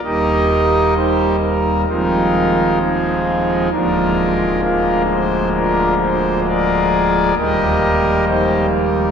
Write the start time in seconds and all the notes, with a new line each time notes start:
0.04 D#1 D#2 G3 A#3 D#4 G4 A#4 D#5
0.96 D#4 G4 C5
1.43 A#4
1.89 D#1 D#2 F3 G#3 C4 D#4 F4 A#4
2.81 D#4 F4 G#4
3.72 D1 D2 F3 G#3 A#3 D4 F4 A#4
4.63 D4 F4 A#4
5.10 C5
5.56 D4 F4 A#4
6.02 C5
6.48 G#4 A#4 D5
7.37 D#1 D#2 D#3 G3 A#3 G4 A#4 D#5
8.27 D#4 G4 C5
8.71 A#4